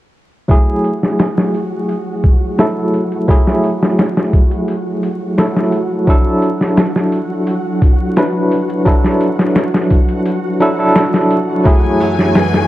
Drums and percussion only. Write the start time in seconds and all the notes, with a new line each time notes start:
0.49 kick, open hi-hat
0.84 open hi-hat
1.03 snare
1.19 snare, open hi-hat
1.38 snare
1.54 open hi-hat
1.89 open hi-hat
2.24 kick, open hi-hat
2.58 snare, open hi-hat
2.94 open hi-hat
3.12 closed hi-hat
3.29 kick, open hi-hat
3.47 snare
3.64 open hi-hat
3.83 snare
3.99 snare, open hi-hat
4.17 snare
4.33 kick, open hi-hat
4.51 closed hi-hat
4.68 open hi-hat
5.03 open hi-hat
5.38 snare, open hi-hat
5.57 snare
5.72 open hi-hat
6.07 kick, open hi-hat
6.42 open hi-hat
6.61 snare
6.77 snare, open hi-hat
6.96 snare
7.12 open hi-hat
7.47 open hi-hat
7.82 kick, open hi-hat
8.16 snare, open hi-hat
8.52 open hi-hat
8.70 closed hi-hat
8.86 kick, open hi-hat
9.04 snare
9.21 open hi-hat
9.39 snare
9.55 snare, open hi-hat
9.74 snare
9.90 kick, open hi-hat
10.09 closed hi-hat
10.25 open hi-hat
10.60 open hi-hat
10.95 snare, open hi-hat
11.14 snare
11.31 open hi-hat
11.65 kick, open hi-hat
12.00 open hi-hat
12.19 snare
12.35 snare, open hi-hat
12.54 snare